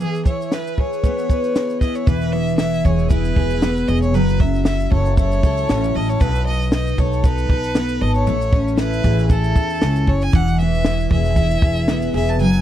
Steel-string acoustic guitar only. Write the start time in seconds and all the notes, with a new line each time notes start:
Already playing: B3
0.01 E3 G#4
0.27 E4
0.52 B4
0.78 G#4
1.04 B3
1.30 B4
1.55 G#4
1.82 E4
2.07 E3
2.33 B3
2.60 E4
2.85 G#4
3.11 E4
3.37 G#4
3.63 B3
3.88 G#4
4.14 F#3
4.40 C#4
4.66 E4
4.90 A4
5.17 E4
5.44 A4
5.69 C#4
5.94 A4
6.20 B2
6.47 B3
6.73 D#4
6.99 A4
7.25 D#4
7.50 A4
7.76 B3
8.01 A4
8.27 A3
8.53 C#4
8.78 E4
9.04 G#4
9.30 E4
9.81 C#4
10.07 G#4
10.32 E3
10.60 B3
10.84 E4
11.11 G#4
11.37 E4
11.63 G#4
11.88 B3
12.14 G#4
12.40 F#3